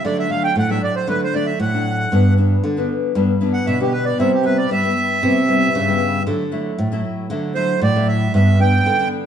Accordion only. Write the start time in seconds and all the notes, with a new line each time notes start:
0.05 D5
0.19 E5
0.31 F5
0.44 G5
0.58 F#5
0.70 E5
0.84 D5
0.96 C5
1.09 B4
1.24 C5
1.35 D5
1.46 E5
1.61 F#5
3.53 F#5
3.67 E5
3.81 G4
3.92 B4
4.05 D5
4.20 E5
4.34 G4
4.45 B4
4.58 D5
4.72 E5
7.55 C5
7.83 D5
8.08 E5
8.35 E5
8.61 G5